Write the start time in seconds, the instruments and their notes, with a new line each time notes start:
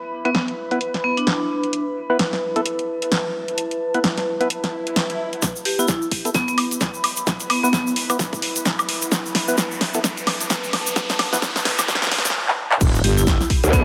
Already playing: ambient pad E4 B4 B5
0.25 synth stab B3 E4 B4, vibraphone B3, closed hi-hat
0.35 snare, closed hi-hat
0.48 closed hi-hat
0.71 synth stab B3 E4 B4, closed hi-hat
0.81 closed hi-hat
0.94 snare, closed hi-hat
1.04 vibraphone B3
1.17 vibraphone D4, closed hi-hat
1.27 snare, closed hi-hat
1.64 closed hi-hat
1.73 closed hi-hat
2.10 synth stab B3 E4 B4
2.19 snare, closed hi-hat
2.33 snare
2.56 synth stab B3 E4 A4, closed hi-hat
2.61 ambient pad A5
2.66 closed hi-hat
2.79 closed hi-hat
3.02 closed hi-hat
3.12 snare, closed hi-hat
3.48 closed hi-hat
3.58 closed hi-hat
3.71 closed hi-hat
3.94 synth stab B3 E4 B4, closed hi-hat
4.04 snare, closed hi-hat
4.18 snare, closed hi-hat
4.40 synth stab B3 E4 B4, closed hi-hat
4.50 closed hi-hat, swell
4.64 snare, closed hi-hat
4.87 closed hi-hat
4.96 snare, closed hi-hat
5.10 closed hi-hat
5.33 closed hi-hat
5.42 ambient pad E4, kick, snare, closed hi-hat, riser, shaker
5.56 shaker
5.65 vibraphone G4, open hi-hat
5.79 synth stab B3 E4 B4, vibraphone E4, shaker
5.88 vibraphone E4, kick, snare, closed hi-hat, shaker
6.02 ambient pad B4, shaker
6.11 kick, open hi-hat
6.17 ambient pad B5
6.25 synth stab B3 E4 A4, closed hi-hat, shaker
6.34 vibraphone B3, kick, snare, closed hi-hat, shaker
6.48 vibraphone B3, closed hi-hat, shaker
6.58 open hi-hat, high woodblock
6.71 closed hi-hat, shaker
6.81 kick, snare, closed hi-hat, shaker
6.94 shaker
7.04 open hi-hat, high woodblock
7.17 closed hi-hat, shaker
7.27 kick, snare, closed hi-hat, shaker
7.40 closed hi-hat, shaker
7.50 vibraphone B3, open hi-hat, high woodblock
7.63 vibraphone B3, synth stab B3 E4 B4, shaker
7.73 vibraphone B3, kick, snare, closed hi-hat, shaker
7.87 shaker
7.96 open hi-hat
8.10 synth stab B3 E4 B4, closed hi-hat, high woodblock, shaker
8.19 kick, snare, closed hi-hat, shaker
8.33 kick, closed hi-hat, shaker
8.42 open hi-hat
8.56 closed hi-hat, shaker
8.65 kick, snare, closed hi-hat, shaker
8.79 closed hi-hat, high woodblock, shaker
8.89 open hi-hat
9.02 closed hi-hat, shaker
9.12 kick, snare, closed hi-hat, shaker
9.26 shaker
9.35 snare, open hi-hat
9.48 synth stab B3 E4 B4, shaker
9.58 kick, snare, closed hi-hat, shaker
9.71 shaker
9.81 kick, snare, open hi-hat
9.94 synth stab B3 E4 A4, closed hi-hat, shaker
9.98 ambient pad A5
10.04 kick, snare, closed hi-hat, shaker
10.17 closed hi-hat, shaker
10.27 snare, open hi-hat, high woodblock
10.41 closed hi-hat, shaker
10.50 kick, snare, closed hi-hat, shaker
10.64 shaker
10.73 snare, open hi-hat, high woodblock
10.86 closed hi-hat, shaker
10.96 kick, snare, closed hi-hat, noise sweep, shaker
11.10 snare, closed hi-hat, shaker
11.19 snare, open hi-hat, high woodblock
11.33 synth stab B3 E4 B4, snare, shaker
11.42 kick, snare, closed hi-hat, shaker
11.56 snare, shaker
11.65 snare, open hi-hat
11.79 snare, closed hi-hat, high woodblock, shaker
11.88 kick, snare, closed hi-hat, shaker
11.95 snare
12.02 kick, snare, closed hi-hat, shaker
12.07 snare
12.12 snare, open hi-hat
12.18 snare
12.25 snare, closed hi-hat, shaker
12.30 snare
12.48 clap
12.71 clap
12.81 wobble bass E1, kick, closed hi-hat, crash, sub drop, shaker
12.95 shaker
13.02 wobble bass G1, vibraphone G4, ambient pad B5, open hi-hat
13.17 vibraphone E4, shaker
13.27 vibraphone E4, kick, snare, closed hi-hat, shaker
13.41 snare, shaker
13.50 kick, open hi-hat
13.64 wobble bass D2, closed hi-hat, shaker
13.73 vibraphone B3, kick, closed hi-hat, shaker